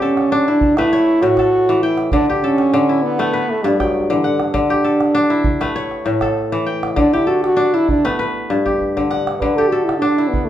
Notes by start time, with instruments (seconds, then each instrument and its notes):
Already playing: kora D3 A3 G4 B4 E5
0.02 french horn C#4, kora A4
0.17 calabash click
0.32 kora D4, calabash click
0.48 french horn D4, kora E4
0.61 calabash thump
0.77 kora A3 B4, french horn E4, calabash click
0.93 kora C#5
1.07 calabash click
1.22 kora A2, french horn F#4, calabash click
1.37 kora A4, calabash thump, calabash click
1.69 kora E3
1.82 french horn E4, kora G5
1.98 calabash click
2.12 kora D3, french horn D4, calabash thump
2.28 kora G4, calabash click
2.43 french horn C#4, kora A4
2.58 calabash click
2.74 kora D3, calabash click
2.89 kora E4
3.02 french horn B3
3.19 kora A3 B4, calabash click
3.33 kora B4
3.50 french horn A3, calabash click
3.64 kora G2, french horn G3, calabash click
3.79 french horn F#3, kora G5, calabash thump, calabash click
4.10 kora D3, french horn E3
4.24 french horn D3, kora F#5
4.40 french horn D4, calabash click
4.54 kora D3, calabash thump
4.70 kora G4, calabash click
4.84 kora A4
5.01 calabash click
5.15 kora D4, calabash click
5.30 kora E4
5.44 calabash thump
5.61 kora A3 B4, calabash click
5.76 kora C#5
5.91 calabash click
6.05 kora A2, calabash click
6.21 kora A4, calabash thump, calabash click
6.52 kora E3
6.66 kora G5
6.83 calabash click
6.96 kora D3, french horn D4, calabash thump, calabash click
7.13 french horn E4, kora G4
7.27 french horn F#4, kora A4
7.44 french horn F#4, calabash click
7.57 kora D4
7.74 kora E4, french horn E4
7.89 french horn D4, calabash thump
8.05 kora A3 B4, french horn B3, calabash click
8.19 kora B4
8.50 kora G2
8.66 kora G4, calabash thump
8.81 calabash thump
8.97 kora D3, calabash thump
9.11 kora F#5, calabash click
9.27 calabash click
9.39 kora D3, french horn B4, calabash thump
9.56 kora G4, french horn A4, calabash click
9.68 french horn F#4, kora A4
9.84 french horn E4
9.89 calabash click
9.98 french horn D4
10.02 kora D4, calabash click
10.18 kora E4
10.29 french horn B3
10.34 calabash thump
10.45 french horn A3